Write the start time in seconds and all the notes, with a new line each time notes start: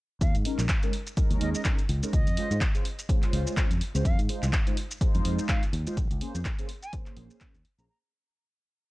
0.21 D#2 F5, kick, closed hi-hat, shaker
0.35 G#2, closed hi-hat, shaker
0.45 G#3 C#4 D#4 A#4, open hi-hat
0.58 A#1, clap, closed hi-hat, shaker
0.69 kick, clap, closed hi-hat, shaker
0.83 G#3 C#4 D#4 A#4, closed hi-hat, shaker
0.93 open hi-hat
1.07 closed hi-hat, shaker
1.17 G#3 C#4 D#4 A#4, muted fingered electric bass stroke, kick, closed hi-hat, shaker
1.31 D#2, closed hi-hat, shaker
1.41 D#2 D#5, open hi-hat
1.54 D#5, shaker
1.65 G#3 C#4 D#4 A#4, kick, clap, closed hi-hat, shaker
1.79 closed hi-hat, shaker
1.89 C#2, open hi-hat
2.03 G#3 C#4 D#4 A#4, closed hi-hat, shaker
2.13 C#2 D#5, kick, closed hi-hat, shaker
2.27 F2, closed hi-hat, shaker
2.37 G#3 C#4 F4 C5, open hi-hat
2.51 G#2, closed hi-hat, shaker
2.61 kick, clap, closed hi-hat, shaker
2.74 G#3 C#4 F4 C5, closed hi-hat, shaker
2.85 open hi-hat
2.99 closed hi-hat, shaker
3.09 G#3 C#4 F4 C5, kick, closed hi-hat, shaker
3.23 muted fingered electric bass stroke, clap, closed hi-hat, shaker
3.33 C#2, open hi-hat
3.47 shaker
3.57 kick, clap, closed hi-hat, shaker
3.71 F2, closed hi-hat, shaker
3.81 muted fingered electric bass stroke, open hi-hat
3.94 C#2 G#3 C#4 F4 C5, closed hi-hat, shaker
4.05 F2 F5, kick, closed hi-hat, shaker
4.19 G#2, closed hi-hat, shaker
4.29 G#3 D#4 F4 C5, open hi-hat
4.43 C2, clap, closed hi-hat, shaker
4.53 kick, clap, closed hi-hat, shaker
4.66 G#3 D#4 F4 C5, closed hi-hat, shaker
4.77 open hi-hat
4.91 closed hi-hat, shaker
5.01 G#3 D#4 F4 C5, muted fingered electric bass stroke, kick, closed hi-hat, shaker
5.15 F2, closed hi-hat, shaker
5.25 F2, open hi-hat
5.39 shaker
5.49 F5, kick, clap, closed hi-hat, shaker
5.63 closed hi-hat, shaker
5.73 D#2, open hi-hat
5.86 G#3 D#4 F4 C5, closed hi-hat, shaker
5.97 A#1, kick, closed hi-hat, shaker
6.10 C#2, closed hi-hat, shaker
6.21 A#3 C#4 G#4 C5, open hi-hat
6.35 F2, closed hi-hat, shaker
6.45 kick, clap, closed hi-hat, shaker
6.58 A#3 C#4 G#4 C5, closed hi-hat, shaker
6.69 open hi-hat
6.82 G#5, closed hi-hat, shaker
6.93 A#3 C#4 G#4 C5, kick, closed hi-hat, shaker
7.06 muted fingered electric bass stroke, clap, closed hi-hat, shaker
7.17 A#1, open hi-hat
7.31 shaker
7.41 kick, clap, closed hi-hat, shaker
7.54 D#2, closed hi-hat, shaker
7.65 open hi-hat
7.78 A#1 A#3 C#4 G#4 C5 A#5, closed hi-hat, shaker
7.89 A#5